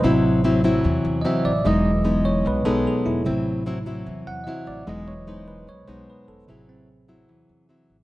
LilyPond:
<<
  \new Staff \with { instrumentName = "Tine electric piano" } { \time 4/4 \key a \lydian \tempo 4 = 149 c''8 r2 r8 <dis'' e''>8 d''8 | dis''4. cis''8 b'8 a'8 gis'8 e'8~ | e'4 r4. fis''8 <dis'' e''>8 d''8 | dis''8 cis''8 c''8 b'8 cis''8 c''8 b'8 a'8 |
gis'8 c'8 r2. | }
  \new Staff \with { instrumentName = "Tine electric piano" } { \clef bass \time 4/4 \key a \lydian <c fis>1 | <fis gis>1 | <c fis>8 r2. r8 | <fis gis>4. r2 r8 |
<c fis>4. r2 r8 | }
  \new Staff \with { instrumentName = "Nylon-string guitar" } { \time 4/4 \key a \lydian << { <fis c' e'>4 <fis c' e'>8 <fis c' e'>4. <fis c' e'>8 r8 | <gis b dis'>8 r8 <gis b dis'>4. <gis b dis'>4. | <fis c' e'>4 <fis c' e'>8 <fis c' e'>4. <fis c' e'>4 | <gis b dis'>8 r8 <gis b dis'>4 r8 <gis b dis'>4. |
<fis c' e'>4 r8 <fis c' e'>4. <fis c' e'>8 r8 | } \\ { a,2 e2 | e2 b,2 | a,2 e2 | e2 b,2 |
a,2 e2 | } >> }
  \new Staff \with { instrumentName = "Upright bass" } { \clef bass \time 4/4 \key a \lydian a,,2 e,8 e,8 r8 a,,8 | e,,2 b,,8 b,,8 r8 e,,8 | a,,2 e,8 e,8 r8 a,,8 | e,,2 b,,8 b,,8 r8 e,,8 |
a,,2 e,8 e,8 r8 a,,8 | }
>>